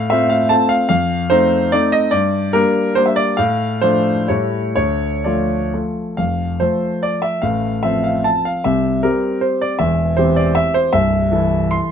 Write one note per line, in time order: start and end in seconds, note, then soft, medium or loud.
0.00 0.52 A2 medium
0.00 0.30 F5 loud
0.10 0.47 A3 medium
0.10 0.47 C4 medium
0.10 0.47 F4 medium
0.10 0.31 E5 medium
0.30 0.50 F5 medium
0.49 0.85 A3 soft
0.49 0.85 C4 soft
0.49 0.85 F4 medium
0.49 0.69 A5 loud
0.69 0.87 F5 loud
0.89 1.29 F2 medium
0.89 1.30 F5 loud
1.30 1.69 A3 medium
1.30 1.69 C4 medium
1.30 1.69 D#4 medium
1.30 1.72 C5 medium
1.72 2.08 A3 medium
1.72 2.08 C4 medium
1.72 2.09 D#4 medium
1.72 1.92 D5 loud
1.92 2.12 D#5 loud
2.11 2.53 G2 medium
2.11 2.53 D5 medium
2.53 2.93 G3 medium
2.53 2.93 A#3 medium
2.53 2.93 D4 medium
2.53 2.96 A#4 medium
2.95 3.34 G3 soft
2.95 3.35 A#3 soft
2.95 3.34 D4 medium
2.95 3.06 C5 medium
3.06 3.17 E5 medium
3.16 3.37 D5 loud
3.37 3.81 A2 medium
3.37 3.82 F5 loud
3.81 4.25 F3 medium
3.81 4.25 A3 medium
3.81 4.25 D4 medium
3.81 4.28 C5 medium
4.28 4.75 A2 medium
4.28 4.72 G3 soft
4.28 4.72 A3 soft
4.28 4.72 E4 soft
4.28 4.74 C#5 medium
4.76 5.24 D2 medium
4.76 5.25 C#5 medium
5.24 5.70 F3 soft
5.24 5.70 A3 soft
5.24 5.70 F4 soft
5.24 5.73 D5 medium
5.74 6.14 F3 soft
5.74 6.14 A3 soft
5.74 6.14 F4 soft
6.17 6.59 F1 soft
6.17 6.59 F2 soft
6.17 6.60 F5 medium
6.60 7.40 F3 soft
6.60 7.40 A3 soft
6.60 7.40 A4 soft
6.60 7.03 C5 medium
7.03 7.23 D5 medium
7.22 7.42 E5 medium
7.42 7.82 A1 soft
7.42 7.83 A2 medium
7.42 7.83 F5 medium
7.83 8.60 F3 soft
7.83 8.60 C4 soft
7.83 8.61 A4 soft
7.83 8.05 E5 medium
8.04 8.25 F5 medium
8.24 8.45 A5 medium
8.45 8.64 F5 medium
8.64 9.02 C2 soft
8.64 9.02 C3 medium
8.64 9.03 E5 medium
9.03 9.76 G3 soft
9.03 9.76 C4 soft
9.03 9.76 G4 soft
9.03 9.42 A#4 medium
9.41 9.60 C5 medium
9.61 9.80 D5 medium
9.79 10.16 E1 soft
9.79 10.16 E2 medium
9.79 10.17 E5 medium
10.17 10.89 E3 soft
10.17 10.89 C4 soft
10.17 10.89 G4 medium
10.17 10.36 C5 medium
10.36 10.55 D5 medium
10.55 10.74 E5 medium
10.74 10.93 C5 medium
10.93 11.31 C1 medium
10.93 11.31 C2 medium
10.93 11.72 E5 medium
11.32 11.92 E3 medium
11.32 11.92 E4 soft
11.32 11.92 A4 medium
11.71 11.92 C6 medium